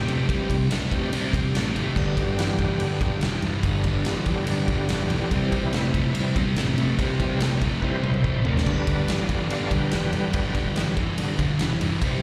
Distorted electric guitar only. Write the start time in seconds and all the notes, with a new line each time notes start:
0.07 C3 A3
0.28 C3 G3
0.49 C3 G3
0.70 C3 A3
0.91 C3 A3
1.13 C3 G3
1.33 C3 G3
1.55 C3 A3
1.75 C3 A3
1.96 G2 D3
2.17 G2 D3
2.38 G2 E3
2.60 G2 E3
2.81 G2 D3
3.01 G2 D3
3.22 G2 E3
3.44 G2 E3
3.65 G2 D3
3.86 G2 D3
4.07 G2 E3
4.27 G2 E3
4.47 G2 D3
4.68 G2 D3
4.88 G2 E3
5.10 G2 E3
5.31 C3 G3
5.51 C3 G3
5.72 C3 A3
5.94 C3 A3
6.14 C3 G3
6.36 C3 G3
6.57 C3 A3
6.78 C3 A3
6.98 C3 G3
7.20 C3 G3
7.40 C3 A3
7.62 C3 A3
7.83 C3 G3
8.03 C3 G3
8.23 C3 A3
8.44 C3 A3
8.67 G2 D3
8.87 G2 D3
9.08 G2 E3
9.30 G2 E3
9.49 G2 D3
9.72 G2 D3
9.93 G2 E3
10.14 G2 E3
10.34 G2 D3
10.55 G2 D3
10.76 G2 E3
10.97 G2 E3
11.18 G2 D3
11.38 G2 D3
11.61 G2 E3
11.81 G2 E3
12.03 C3 G3